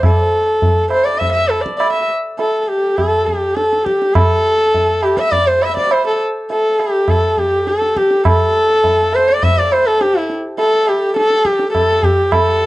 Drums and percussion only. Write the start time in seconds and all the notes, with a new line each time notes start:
0.03 tabla na, tabla ge
0.62 tabla tin, tabla ge
0.90 tabla na
1.21 tabla tin, tabla ge
1.51 tabla na
1.66 tabla ke
1.80 tabla na
2.39 tabla tin
2.98 tabla na, tabla ge
3.28 tabla ge
3.57 tabla te
3.73 tabla te
3.86 tabla ke
4.02 tabla te
4.15 tabla na, tabla ge
4.74 tabla tin, tabla ge
5.03 tabla na
5.17 tabla ke
5.32 tabla tin, tabla ge
5.62 tabla na
5.77 tabla ke
5.91 tabla na
6.50 tabla tin
6.79 tabla na
7.08 tabla na, tabla ge
7.37 tabla ge
7.67 tabla te
7.82 tabla te
7.97 tabla ke
8.11 tabla te
8.25 tabla na, tabla ge
8.84 tabla tin, tabla ge
9.13 tabla na
9.43 tabla tin, tabla ge
9.72 tabla na
10.01 tabla te
10.30 tabla te
10.58 tabla tin
10.87 tabla na
11.16 tabla te
11.30 tabla te
11.45 tabla ke
11.59 tabla te
11.75 tabla na, tabla ge
12.03 tabla ge
12.32 tabla na, tabla ge